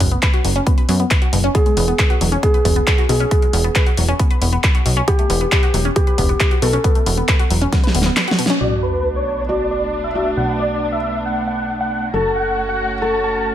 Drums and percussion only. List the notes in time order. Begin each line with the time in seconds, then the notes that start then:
0.00 kick, open hi-hat
0.11 closed hi-hat
0.22 kick, clap, closed hi-hat
0.34 closed hi-hat
0.45 open hi-hat
0.56 closed hi-hat
0.67 kick, closed hi-hat
0.78 closed hi-hat
0.89 open hi-hat
1.00 closed hi-hat
1.11 kick, clap, closed hi-hat
1.22 closed hi-hat
1.33 open hi-hat
1.44 closed hi-hat
1.55 kick, closed hi-hat
1.66 closed hi-hat
1.77 open hi-hat
1.88 closed hi-hat
1.99 kick, clap, closed hi-hat
2.10 closed hi-hat
2.21 open hi-hat
2.32 closed hi-hat
2.43 kick, closed hi-hat
2.54 closed hi-hat
2.65 kick, open hi-hat
2.76 closed hi-hat
2.87 kick, clap, closed hi-hat
2.98 closed hi-hat
3.09 open hi-hat
3.20 closed hi-hat
3.31 kick, closed hi-hat
3.42 closed hi-hat
3.53 open hi-hat
3.64 closed hi-hat
3.75 kick, clap, closed hi-hat
3.86 closed hi-hat
3.97 open hi-hat
4.08 closed hi-hat
4.20 kick, closed hi-hat
4.31 closed hi-hat
4.42 open hi-hat
4.53 closed hi-hat
4.64 kick, clap, closed hi-hat
4.75 closed hi-hat
4.86 open hi-hat
4.97 closed hi-hat
5.08 kick, closed hi-hat
5.19 closed hi-hat
5.30 open hi-hat
5.41 closed hi-hat
5.52 kick, clap, closed hi-hat
5.63 closed hi-hat
5.74 open hi-hat
5.85 closed hi-hat
5.96 kick, closed hi-hat
6.07 closed hi-hat
6.18 kick, open hi-hat
6.29 closed hi-hat
6.40 kick, clap, closed hi-hat
6.51 closed hi-hat
6.62 open hi-hat
6.73 closed hi-hat
6.84 kick, closed hi-hat
6.95 closed hi-hat
7.06 open hi-hat
7.17 closed hi-hat
7.28 kick, clap, closed hi-hat
7.39 closed hi-hat
7.50 open hi-hat
7.62 closed hi-hat
7.72 kick, snare, closed hi-hat
7.84 snare, closed hi-hat
7.95 open hi-hat
8.02 snare, closed hi-hat
8.17 snare, clap, closed hi-hat
8.28 snare, closed hi-hat
8.39 open hi-hat
8.46 snare, closed hi-hat